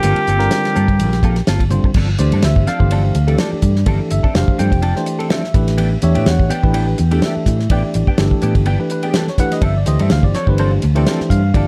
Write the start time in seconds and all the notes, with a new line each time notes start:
Already playing: D3 G3 C4 F4 G4 A#4
0.03 G1 A#3 C4 F4 A4, hi-hat pedal, ride
0.16 muted fingered electric bass stroke, ride
0.27 G1 A#3 C4 F4 A4, hi-hat pedal
0.38 D3 G3 C4 F4 A#4, muted clean electric guitar stroke, snare, ride
0.51 muted clean electric guitar stroke, snare, hi-hat pedal, ride
0.65 muted clean electric guitar stroke, snare, ride
0.75 G2 A#3 C4 F4 A4, hi-hat pedal
0.88 kick, ride
0.99 A#1, hi-hat pedal, ride
1.13 muted clean electric guitar stroke, snare, ride
1.23 A#3 C4 F4 A4, kick, hi-hat pedal
1.36 muted clean electric guitar stroke, snare, ride
1.47 G1 A#3 C4 F4 A4, snare, hi-hat pedal, ride
1.60 kick, ride
1.70 D3 G3 C4 F4 C5, muted clean electric guitar stroke, hi-hat pedal, high tom
1.84 muted fingered electric bass stroke, muted clean electric guitar stroke, kick
1.94 G1 F3 C4 D4 A4, kick, crash
2.10 muted clean electric guitar stroke
2.18 D2 E3 A3 D4 G4 C5 D5, muted clean electric guitar stroke, hi-hat pedal, ride
2.32 G2 C4 D4 A4, ride
2.42 D2 E5, muted clean electric guitar stroke, snare, ride
2.56 G1, kick
2.67 F3 C4 D4 A4 F5, snare, hi-hat pedal, ride
2.79 G1 E3 A3 D4 G4 C5, muted clean electric guitar stroke, kick
2.91 F3 C4 D4 A4, ride
3.04 muted clean electric guitar stroke
3.15 D2, muted clean electric guitar stroke, hi-hat pedal, ride
3.27 E3 A3 C4 D4 G4 A4, ride
3.36 F3 C4 D4 C#5, snare, ride
3.40 A4 D5
3.52 muted clean electric guitar stroke, muted fingered electric bass stroke
3.62 G2, muted clean electric guitar stroke, kick, hi-hat pedal, ride
3.76 snare
3.86 G1 E3 F3 A3 C4 D4 G4 A4, kick, ride
4.00 muted clean electric guitar stroke
4.10 G1 E5, muted clean electric guitar stroke, hi-hat pedal, ride
4.23 C4 D4 A4, muted fingered electric bass stroke, kick
4.34 F1 E3 A3 D4 G4 C5 F5, muted clean electric guitar stroke, snare, ride
4.48 muted fingered electric bass stroke, kick
4.58 G2 F3 C4 D4 A4 G5, hi-hat pedal, ride
4.72 F1, muted clean electric guitar stroke, kick, ride
4.82 F3 C4 D4 A4, ride
4.95 E3 A3 D4 G4 C5, muted clean electric guitar stroke, snare
5.06 muted clean electric guitar stroke, hi-hat pedal, ride
5.19 C4 D4 A4, ride
5.29 F3 C4 D4 A4 D#5 E5, snare, ride
5.43 muted clean electric guitar stroke, snare
5.54 A1 E3 A3 D4 G4 B4, muted clean electric guitar stroke, kick, hi-hat pedal, ride
5.68 snare, ride
5.78 E3 B3 D4 G4, ride
5.91 muted clean electric guitar stroke
6.02 E2 E3 A3 D4 G4 C#5 E5, muted clean electric guitar stroke, hi-hat pedal, ride
6.15 A2 B3 D4 G4, ride
6.26 E2 F#5, muted clean electric guitar stroke, snare, ride
6.39 A1, kick
6.50 E3 B3 D4 G4 G5, hi-hat pedal, ride
6.63 A1 E3 A3 D4 G4 B4, muted clean electric guitar stroke, kick
6.73 E3 B3 D4 G4, ride
6.87 muted clean electric guitar stroke
6.98 E2, muted clean electric guitar stroke, hi-hat pedal, ride
7.11 E3 A3 B3 D4 G4 A4, ride
7.22 E3 B3 D4 G4 E5, snare, ride
7.36 muted clean electric guitar stroke, muted fingered electric bass stroke
7.46 A2, muted clean electric guitar stroke, kick, hi-hat pedal, ride
7.59 snare
7.70 A1 E3 A3 B3 D4 G4 D5, kick, ride
7.84 muted clean electric guitar stroke
7.94 A1, muted clean electric guitar stroke, hi-hat pedal, ride
8.07 B3 D4 G4, kick
8.18 G1 E3 A3 D4 G4 A4, muted clean electric guitar stroke, snare, ride
8.31 muted fingered electric bass stroke, kick
8.42 A2 E3 B3 D4 G4, hi-hat pedal, ride
8.55 G1, kick, ride
8.66 E3 B3 D4 G4, ride
8.79 E3 A3 D4 G4 B4, muted clean electric guitar stroke
8.90 B4, muted clean electric guitar stroke, hi-hat pedal, ride
9.03 B3 D4 G4 G#4, ride
9.14 E3 B3 D4 G4 A4, snare, ride
9.28 C#5, muted clean electric guitar stroke, snare
9.38 E3 A3 D4 G4 B4 F#5, muted clean electric guitar stroke, kick, hi-hat pedal, ride
9.52 D#5, snare, ride
9.62 G1 F3 C4 D4 A4 E5, kick, ride
9.75 D5, muted clean electric guitar stroke
9.86 D2 E3 A3 D4 G4 C5 D#5, muted clean electric guitar stroke, hi-hat pedal, ride
9.99 G2 C4 D4 A4 E5, ride
10.10 D2 F5, muted clean electric guitar stroke, snare, ride
10.23 G1 D5, kick
10.34 F3 C4 D4 A4 C#5, snare, hi-hat pedal, ride
10.47 G1 E3 A3 D4 G4 B4 C5, kick
10.58 F3 C4 D4 A4 C5, ride
10.71 F4, muted clean electric guitar stroke
10.82 D2, muted clean electric guitar stroke, hi-hat pedal, ride
10.95 E3 A3 C4 D4 G4 A4 C5, ride
11.06 F3 C4 D4 A4, snare, ride
11.20 muted fingered electric bass stroke, muted clean electric guitar stroke, snare
11.30 G2 F5, muted clean electric guitar stroke, kick, hi-hat pedal, ride
11.54 G1 E3 F3 A3 C4 D4 G4 A4 D5, kick, ride